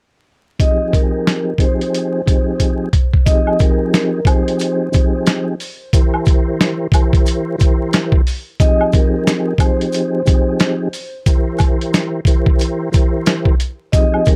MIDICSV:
0, 0, Header, 1, 4, 480
1, 0, Start_track
1, 0, Key_signature, -4, "minor"
1, 0, Tempo, 666667
1, 430, Time_signature, 4, 2, 24, 8
1, 10338, End_track
2, 0, Start_track
2, 0, Title_t, "Vibraphone"
2, 0, Program_c, 0, 11
2, 431, Note_on_c, 0, 75, 93
2, 646, Note_off_c, 0, 75, 0
2, 667, Note_on_c, 0, 70, 79
2, 1120, Note_off_c, 0, 70, 0
2, 1145, Note_on_c, 0, 72, 77
2, 1986, Note_off_c, 0, 72, 0
2, 2345, Note_on_c, 0, 75, 94
2, 2563, Note_off_c, 0, 75, 0
2, 2589, Note_on_c, 0, 70, 81
2, 3041, Note_off_c, 0, 70, 0
2, 3070, Note_on_c, 0, 72, 72
2, 3908, Note_off_c, 0, 72, 0
2, 6191, Note_on_c, 0, 75, 93
2, 6406, Note_off_c, 0, 75, 0
2, 6433, Note_on_c, 0, 70, 75
2, 6882, Note_off_c, 0, 70, 0
2, 6907, Note_on_c, 0, 72, 84
2, 7747, Note_off_c, 0, 72, 0
2, 10025, Note_on_c, 0, 75, 94
2, 10243, Note_off_c, 0, 75, 0
2, 10271, Note_on_c, 0, 70, 85
2, 10338, Note_off_c, 0, 70, 0
2, 10338, End_track
3, 0, Start_track
3, 0, Title_t, "Tonewheel organ"
3, 0, Program_c, 1, 16
3, 426, Note_on_c, 1, 53, 89
3, 428, Note_on_c, 1, 60, 83
3, 428, Note_on_c, 1, 63, 89
3, 430, Note_on_c, 1, 67, 82
3, 430, Note_on_c, 1, 68, 93
3, 1103, Note_off_c, 1, 53, 0
3, 1104, Note_off_c, 1, 60, 0
3, 1104, Note_off_c, 1, 63, 0
3, 1105, Note_off_c, 1, 67, 0
3, 1105, Note_off_c, 1, 68, 0
3, 1140, Note_on_c, 1, 53, 89
3, 1141, Note_on_c, 1, 60, 84
3, 1142, Note_on_c, 1, 63, 83
3, 1143, Note_on_c, 1, 67, 85
3, 1144, Note_on_c, 1, 68, 100
3, 1595, Note_off_c, 1, 53, 0
3, 1596, Note_off_c, 1, 60, 0
3, 1596, Note_off_c, 1, 63, 0
3, 1597, Note_off_c, 1, 67, 0
3, 1597, Note_off_c, 1, 68, 0
3, 1626, Note_on_c, 1, 53, 96
3, 1626, Note_on_c, 1, 60, 77
3, 1627, Note_on_c, 1, 63, 73
3, 1628, Note_on_c, 1, 67, 81
3, 1629, Note_on_c, 1, 68, 96
3, 2078, Note_off_c, 1, 53, 0
3, 2078, Note_off_c, 1, 60, 0
3, 2079, Note_off_c, 1, 63, 0
3, 2079, Note_off_c, 1, 67, 0
3, 2080, Note_off_c, 1, 68, 0
3, 2354, Note_on_c, 1, 53, 93
3, 2355, Note_on_c, 1, 60, 87
3, 2356, Note_on_c, 1, 63, 84
3, 2356, Note_on_c, 1, 67, 84
3, 2357, Note_on_c, 1, 68, 115
3, 3027, Note_off_c, 1, 53, 0
3, 3028, Note_off_c, 1, 60, 0
3, 3028, Note_off_c, 1, 63, 0
3, 3029, Note_off_c, 1, 67, 0
3, 3029, Note_off_c, 1, 68, 0
3, 3069, Note_on_c, 1, 53, 92
3, 3070, Note_on_c, 1, 60, 92
3, 3071, Note_on_c, 1, 63, 79
3, 3071, Note_on_c, 1, 67, 84
3, 3073, Note_on_c, 1, 68, 108
3, 3520, Note_off_c, 1, 53, 0
3, 3520, Note_off_c, 1, 60, 0
3, 3521, Note_off_c, 1, 63, 0
3, 3521, Note_off_c, 1, 67, 0
3, 3522, Note_off_c, 1, 68, 0
3, 3541, Note_on_c, 1, 53, 97
3, 3542, Note_on_c, 1, 60, 89
3, 3543, Note_on_c, 1, 63, 88
3, 3544, Note_on_c, 1, 67, 87
3, 3544, Note_on_c, 1, 68, 98
3, 3995, Note_off_c, 1, 53, 0
3, 3996, Note_off_c, 1, 60, 0
3, 3997, Note_off_c, 1, 63, 0
3, 3997, Note_off_c, 1, 67, 0
3, 3997, Note_off_c, 1, 68, 0
3, 4272, Note_on_c, 1, 52, 94
3, 4274, Note_on_c, 1, 64, 88
3, 4275, Note_on_c, 1, 67, 93
3, 4275, Note_on_c, 1, 70, 88
3, 4277, Note_on_c, 1, 72, 100
3, 4946, Note_off_c, 1, 52, 0
3, 4947, Note_off_c, 1, 64, 0
3, 4948, Note_off_c, 1, 67, 0
3, 4948, Note_off_c, 1, 70, 0
3, 4949, Note_off_c, 1, 72, 0
3, 4995, Note_on_c, 1, 52, 92
3, 4997, Note_on_c, 1, 64, 82
3, 4997, Note_on_c, 1, 67, 87
3, 4998, Note_on_c, 1, 70, 83
3, 4999, Note_on_c, 1, 72, 104
3, 5443, Note_off_c, 1, 52, 0
3, 5443, Note_off_c, 1, 64, 0
3, 5444, Note_off_c, 1, 67, 0
3, 5444, Note_off_c, 1, 70, 0
3, 5445, Note_off_c, 1, 72, 0
3, 5460, Note_on_c, 1, 52, 100
3, 5460, Note_on_c, 1, 64, 86
3, 5460, Note_on_c, 1, 67, 89
3, 5462, Note_on_c, 1, 70, 79
3, 5463, Note_on_c, 1, 72, 101
3, 5915, Note_off_c, 1, 52, 0
3, 5915, Note_off_c, 1, 64, 0
3, 5915, Note_off_c, 1, 67, 0
3, 5916, Note_off_c, 1, 70, 0
3, 5917, Note_off_c, 1, 72, 0
3, 6193, Note_on_c, 1, 53, 97
3, 6194, Note_on_c, 1, 60, 89
3, 6195, Note_on_c, 1, 63, 84
3, 6196, Note_on_c, 1, 67, 87
3, 6197, Note_on_c, 1, 68, 112
3, 6867, Note_off_c, 1, 53, 0
3, 6867, Note_off_c, 1, 60, 0
3, 6868, Note_off_c, 1, 63, 0
3, 6869, Note_off_c, 1, 67, 0
3, 6869, Note_off_c, 1, 68, 0
3, 6909, Note_on_c, 1, 53, 96
3, 6910, Note_on_c, 1, 60, 93
3, 6911, Note_on_c, 1, 63, 84
3, 6912, Note_on_c, 1, 67, 81
3, 6913, Note_on_c, 1, 68, 108
3, 7359, Note_off_c, 1, 53, 0
3, 7360, Note_off_c, 1, 60, 0
3, 7361, Note_off_c, 1, 63, 0
3, 7361, Note_off_c, 1, 67, 0
3, 7361, Note_off_c, 1, 68, 0
3, 7380, Note_on_c, 1, 53, 99
3, 7381, Note_on_c, 1, 60, 87
3, 7383, Note_on_c, 1, 63, 93
3, 7383, Note_on_c, 1, 67, 86
3, 7384, Note_on_c, 1, 68, 103
3, 7835, Note_off_c, 1, 53, 0
3, 7836, Note_off_c, 1, 60, 0
3, 7836, Note_off_c, 1, 63, 0
3, 7837, Note_off_c, 1, 67, 0
3, 7837, Note_off_c, 1, 68, 0
3, 8111, Note_on_c, 1, 52, 94
3, 8111, Note_on_c, 1, 64, 88
3, 8112, Note_on_c, 1, 67, 93
3, 8113, Note_on_c, 1, 70, 83
3, 8113, Note_on_c, 1, 72, 97
3, 8786, Note_off_c, 1, 52, 0
3, 8786, Note_off_c, 1, 64, 0
3, 8786, Note_off_c, 1, 67, 0
3, 8787, Note_off_c, 1, 70, 0
3, 8787, Note_off_c, 1, 72, 0
3, 8836, Note_on_c, 1, 52, 95
3, 8837, Note_on_c, 1, 64, 86
3, 8838, Note_on_c, 1, 67, 86
3, 8839, Note_on_c, 1, 70, 84
3, 8839, Note_on_c, 1, 72, 102
3, 9283, Note_off_c, 1, 52, 0
3, 9283, Note_off_c, 1, 64, 0
3, 9284, Note_off_c, 1, 67, 0
3, 9285, Note_off_c, 1, 70, 0
3, 9285, Note_off_c, 1, 72, 0
3, 9300, Note_on_c, 1, 52, 96
3, 9301, Note_on_c, 1, 64, 89
3, 9302, Note_on_c, 1, 67, 87
3, 9303, Note_on_c, 1, 70, 79
3, 9304, Note_on_c, 1, 72, 104
3, 9755, Note_off_c, 1, 52, 0
3, 9755, Note_off_c, 1, 64, 0
3, 9756, Note_off_c, 1, 67, 0
3, 9757, Note_off_c, 1, 70, 0
3, 9757, Note_off_c, 1, 72, 0
3, 10035, Note_on_c, 1, 53, 92
3, 10035, Note_on_c, 1, 60, 90
3, 10036, Note_on_c, 1, 63, 85
3, 10038, Note_on_c, 1, 67, 87
3, 10039, Note_on_c, 1, 68, 113
3, 10338, Note_off_c, 1, 53, 0
3, 10338, Note_off_c, 1, 60, 0
3, 10338, Note_off_c, 1, 63, 0
3, 10338, Note_off_c, 1, 67, 0
3, 10338, Note_off_c, 1, 68, 0
3, 10338, End_track
4, 0, Start_track
4, 0, Title_t, "Drums"
4, 429, Note_on_c, 9, 36, 107
4, 433, Note_on_c, 9, 42, 88
4, 501, Note_off_c, 9, 36, 0
4, 505, Note_off_c, 9, 42, 0
4, 672, Note_on_c, 9, 36, 88
4, 680, Note_on_c, 9, 42, 60
4, 744, Note_off_c, 9, 36, 0
4, 752, Note_off_c, 9, 42, 0
4, 916, Note_on_c, 9, 38, 111
4, 916, Note_on_c, 9, 40, 91
4, 923, Note_on_c, 9, 42, 85
4, 988, Note_off_c, 9, 38, 0
4, 988, Note_off_c, 9, 40, 0
4, 995, Note_off_c, 9, 42, 0
4, 1139, Note_on_c, 9, 36, 86
4, 1152, Note_on_c, 9, 42, 71
4, 1211, Note_off_c, 9, 36, 0
4, 1224, Note_off_c, 9, 42, 0
4, 1305, Note_on_c, 9, 42, 49
4, 1377, Note_off_c, 9, 42, 0
4, 1400, Note_on_c, 9, 42, 85
4, 1472, Note_off_c, 9, 42, 0
4, 1638, Note_on_c, 9, 36, 91
4, 1641, Note_on_c, 9, 42, 82
4, 1710, Note_off_c, 9, 36, 0
4, 1713, Note_off_c, 9, 42, 0
4, 1870, Note_on_c, 9, 36, 55
4, 1871, Note_on_c, 9, 42, 98
4, 1942, Note_off_c, 9, 36, 0
4, 1943, Note_off_c, 9, 42, 0
4, 2110, Note_on_c, 9, 36, 84
4, 2111, Note_on_c, 9, 42, 75
4, 2182, Note_off_c, 9, 36, 0
4, 2183, Note_off_c, 9, 42, 0
4, 2257, Note_on_c, 9, 36, 81
4, 2329, Note_off_c, 9, 36, 0
4, 2350, Note_on_c, 9, 36, 114
4, 2352, Note_on_c, 9, 42, 98
4, 2353, Note_on_c, 9, 82, 78
4, 2422, Note_off_c, 9, 36, 0
4, 2424, Note_off_c, 9, 42, 0
4, 2425, Note_off_c, 9, 82, 0
4, 2499, Note_on_c, 9, 76, 75
4, 2571, Note_off_c, 9, 76, 0
4, 2585, Note_on_c, 9, 82, 50
4, 2593, Note_on_c, 9, 36, 97
4, 2600, Note_on_c, 9, 42, 64
4, 2657, Note_off_c, 9, 82, 0
4, 2665, Note_off_c, 9, 36, 0
4, 2672, Note_off_c, 9, 42, 0
4, 2836, Note_on_c, 9, 82, 83
4, 2837, Note_on_c, 9, 38, 116
4, 2837, Note_on_c, 9, 40, 91
4, 2844, Note_on_c, 9, 42, 94
4, 2908, Note_off_c, 9, 82, 0
4, 2909, Note_off_c, 9, 38, 0
4, 2909, Note_off_c, 9, 40, 0
4, 2916, Note_off_c, 9, 42, 0
4, 3060, Note_on_c, 9, 36, 93
4, 3074, Note_on_c, 9, 42, 73
4, 3074, Note_on_c, 9, 76, 82
4, 3074, Note_on_c, 9, 82, 58
4, 3132, Note_off_c, 9, 36, 0
4, 3146, Note_off_c, 9, 42, 0
4, 3146, Note_off_c, 9, 76, 0
4, 3146, Note_off_c, 9, 82, 0
4, 3226, Note_on_c, 9, 42, 52
4, 3298, Note_off_c, 9, 42, 0
4, 3308, Note_on_c, 9, 82, 78
4, 3321, Note_on_c, 9, 42, 94
4, 3380, Note_off_c, 9, 82, 0
4, 3393, Note_off_c, 9, 42, 0
4, 3550, Note_on_c, 9, 82, 50
4, 3559, Note_on_c, 9, 36, 95
4, 3562, Note_on_c, 9, 42, 83
4, 3622, Note_off_c, 9, 82, 0
4, 3631, Note_off_c, 9, 36, 0
4, 3634, Note_off_c, 9, 42, 0
4, 3791, Note_on_c, 9, 42, 102
4, 3791, Note_on_c, 9, 82, 70
4, 3797, Note_on_c, 9, 38, 120
4, 3797, Note_on_c, 9, 40, 92
4, 3863, Note_off_c, 9, 42, 0
4, 3863, Note_off_c, 9, 82, 0
4, 3869, Note_off_c, 9, 38, 0
4, 3869, Note_off_c, 9, 40, 0
4, 4033, Note_on_c, 9, 46, 57
4, 4039, Note_on_c, 9, 82, 54
4, 4105, Note_off_c, 9, 46, 0
4, 4111, Note_off_c, 9, 82, 0
4, 4270, Note_on_c, 9, 36, 112
4, 4274, Note_on_c, 9, 42, 97
4, 4275, Note_on_c, 9, 82, 78
4, 4342, Note_off_c, 9, 36, 0
4, 4346, Note_off_c, 9, 42, 0
4, 4347, Note_off_c, 9, 82, 0
4, 4419, Note_on_c, 9, 76, 76
4, 4491, Note_off_c, 9, 76, 0
4, 4504, Note_on_c, 9, 82, 49
4, 4513, Note_on_c, 9, 36, 99
4, 4521, Note_on_c, 9, 42, 60
4, 4576, Note_off_c, 9, 82, 0
4, 4585, Note_off_c, 9, 36, 0
4, 4593, Note_off_c, 9, 42, 0
4, 4757, Note_on_c, 9, 38, 114
4, 4757, Note_on_c, 9, 40, 95
4, 4759, Note_on_c, 9, 82, 88
4, 4764, Note_on_c, 9, 42, 93
4, 4829, Note_off_c, 9, 38, 0
4, 4829, Note_off_c, 9, 40, 0
4, 4831, Note_off_c, 9, 82, 0
4, 4836, Note_off_c, 9, 42, 0
4, 4980, Note_on_c, 9, 36, 94
4, 4993, Note_on_c, 9, 42, 74
4, 4997, Note_on_c, 9, 76, 81
4, 4997, Note_on_c, 9, 82, 58
4, 5052, Note_off_c, 9, 36, 0
4, 5065, Note_off_c, 9, 42, 0
4, 5069, Note_off_c, 9, 76, 0
4, 5069, Note_off_c, 9, 82, 0
4, 5134, Note_on_c, 9, 36, 99
4, 5145, Note_on_c, 9, 42, 51
4, 5206, Note_off_c, 9, 36, 0
4, 5217, Note_off_c, 9, 42, 0
4, 5228, Note_on_c, 9, 82, 76
4, 5241, Note_on_c, 9, 42, 94
4, 5300, Note_off_c, 9, 82, 0
4, 5313, Note_off_c, 9, 42, 0
4, 5470, Note_on_c, 9, 82, 51
4, 5479, Note_on_c, 9, 36, 98
4, 5481, Note_on_c, 9, 42, 87
4, 5542, Note_off_c, 9, 82, 0
4, 5551, Note_off_c, 9, 36, 0
4, 5553, Note_off_c, 9, 42, 0
4, 5711, Note_on_c, 9, 42, 106
4, 5711, Note_on_c, 9, 82, 68
4, 5717, Note_on_c, 9, 38, 122
4, 5717, Note_on_c, 9, 40, 95
4, 5783, Note_off_c, 9, 42, 0
4, 5783, Note_off_c, 9, 82, 0
4, 5789, Note_off_c, 9, 38, 0
4, 5789, Note_off_c, 9, 40, 0
4, 5847, Note_on_c, 9, 36, 96
4, 5919, Note_off_c, 9, 36, 0
4, 5953, Note_on_c, 9, 46, 56
4, 5961, Note_on_c, 9, 82, 51
4, 6025, Note_off_c, 9, 46, 0
4, 6033, Note_off_c, 9, 82, 0
4, 6190, Note_on_c, 9, 36, 114
4, 6193, Note_on_c, 9, 42, 94
4, 6197, Note_on_c, 9, 82, 77
4, 6262, Note_off_c, 9, 36, 0
4, 6265, Note_off_c, 9, 42, 0
4, 6269, Note_off_c, 9, 82, 0
4, 6341, Note_on_c, 9, 76, 77
4, 6413, Note_off_c, 9, 76, 0
4, 6425, Note_on_c, 9, 82, 49
4, 6433, Note_on_c, 9, 36, 96
4, 6440, Note_on_c, 9, 42, 63
4, 6497, Note_off_c, 9, 82, 0
4, 6505, Note_off_c, 9, 36, 0
4, 6512, Note_off_c, 9, 42, 0
4, 6676, Note_on_c, 9, 38, 115
4, 6676, Note_on_c, 9, 40, 92
4, 6677, Note_on_c, 9, 82, 90
4, 6684, Note_on_c, 9, 42, 96
4, 6748, Note_off_c, 9, 38, 0
4, 6748, Note_off_c, 9, 40, 0
4, 6749, Note_off_c, 9, 82, 0
4, 6756, Note_off_c, 9, 42, 0
4, 6900, Note_on_c, 9, 36, 94
4, 6913, Note_on_c, 9, 42, 75
4, 6914, Note_on_c, 9, 76, 80
4, 6914, Note_on_c, 9, 82, 57
4, 6972, Note_off_c, 9, 36, 0
4, 6985, Note_off_c, 9, 42, 0
4, 6986, Note_off_c, 9, 76, 0
4, 6986, Note_off_c, 9, 82, 0
4, 7065, Note_on_c, 9, 42, 52
4, 7137, Note_off_c, 9, 42, 0
4, 7146, Note_on_c, 9, 82, 77
4, 7160, Note_on_c, 9, 42, 90
4, 7218, Note_off_c, 9, 82, 0
4, 7232, Note_off_c, 9, 42, 0
4, 7388, Note_on_c, 9, 82, 51
4, 7398, Note_on_c, 9, 36, 99
4, 7401, Note_on_c, 9, 42, 88
4, 7460, Note_off_c, 9, 82, 0
4, 7470, Note_off_c, 9, 36, 0
4, 7473, Note_off_c, 9, 42, 0
4, 7629, Note_on_c, 9, 82, 69
4, 7630, Note_on_c, 9, 42, 103
4, 7636, Note_on_c, 9, 38, 123
4, 7636, Note_on_c, 9, 40, 98
4, 7701, Note_off_c, 9, 82, 0
4, 7702, Note_off_c, 9, 42, 0
4, 7708, Note_off_c, 9, 38, 0
4, 7708, Note_off_c, 9, 40, 0
4, 7871, Note_on_c, 9, 46, 57
4, 7877, Note_on_c, 9, 82, 52
4, 7943, Note_off_c, 9, 46, 0
4, 7949, Note_off_c, 9, 82, 0
4, 8109, Note_on_c, 9, 36, 117
4, 8111, Note_on_c, 9, 42, 97
4, 8111, Note_on_c, 9, 82, 82
4, 8181, Note_off_c, 9, 36, 0
4, 8183, Note_off_c, 9, 42, 0
4, 8183, Note_off_c, 9, 82, 0
4, 8342, Note_on_c, 9, 76, 69
4, 8342, Note_on_c, 9, 82, 48
4, 8352, Note_on_c, 9, 36, 98
4, 8358, Note_on_c, 9, 42, 63
4, 8414, Note_off_c, 9, 76, 0
4, 8414, Note_off_c, 9, 82, 0
4, 8424, Note_off_c, 9, 36, 0
4, 8430, Note_off_c, 9, 42, 0
4, 8506, Note_on_c, 9, 42, 53
4, 8578, Note_off_c, 9, 42, 0
4, 8596, Note_on_c, 9, 82, 86
4, 8597, Note_on_c, 9, 38, 118
4, 8597, Note_on_c, 9, 40, 96
4, 8604, Note_on_c, 9, 42, 93
4, 8668, Note_off_c, 9, 82, 0
4, 8669, Note_off_c, 9, 38, 0
4, 8669, Note_off_c, 9, 40, 0
4, 8676, Note_off_c, 9, 42, 0
4, 8819, Note_on_c, 9, 36, 91
4, 8832, Note_on_c, 9, 82, 57
4, 8833, Note_on_c, 9, 42, 74
4, 8891, Note_off_c, 9, 36, 0
4, 8904, Note_off_c, 9, 82, 0
4, 8905, Note_off_c, 9, 42, 0
4, 8973, Note_on_c, 9, 36, 100
4, 9045, Note_off_c, 9, 36, 0
4, 9065, Note_on_c, 9, 82, 75
4, 9080, Note_on_c, 9, 42, 90
4, 9137, Note_off_c, 9, 82, 0
4, 9152, Note_off_c, 9, 42, 0
4, 9310, Note_on_c, 9, 82, 50
4, 9318, Note_on_c, 9, 36, 96
4, 9319, Note_on_c, 9, 42, 84
4, 9382, Note_off_c, 9, 82, 0
4, 9390, Note_off_c, 9, 36, 0
4, 9391, Note_off_c, 9, 42, 0
4, 9550, Note_on_c, 9, 42, 107
4, 9550, Note_on_c, 9, 82, 68
4, 9556, Note_on_c, 9, 38, 120
4, 9556, Note_on_c, 9, 40, 95
4, 9622, Note_off_c, 9, 42, 0
4, 9622, Note_off_c, 9, 82, 0
4, 9628, Note_off_c, 9, 38, 0
4, 9628, Note_off_c, 9, 40, 0
4, 9687, Note_on_c, 9, 36, 93
4, 9759, Note_off_c, 9, 36, 0
4, 9791, Note_on_c, 9, 42, 76
4, 9798, Note_on_c, 9, 82, 52
4, 9863, Note_off_c, 9, 42, 0
4, 9870, Note_off_c, 9, 82, 0
4, 10030, Note_on_c, 9, 36, 113
4, 10032, Note_on_c, 9, 42, 98
4, 10034, Note_on_c, 9, 82, 81
4, 10102, Note_off_c, 9, 36, 0
4, 10104, Note_off_c, 9, 42, 0
4, 10106, Note_off_c, 9, 82, 0
4, 10179, Note_on_c, 9, 76, 74
4, 10251, Note_off_c, 9, 76, 0
4, 10263, Note_on_c, 9, 82, 48
4, 10273, Note_on_c, 9, 36, 95
4, 10281, Note_on_c, 9, 42, 64
4, 10335, Note_off_c, 9, 82, 0
4, 10338, Note_off_c, 9, 36, 0
4, 10338, Note_off_c, 9, 42, 0
4, 10338, End_track
0, 0, End_of_file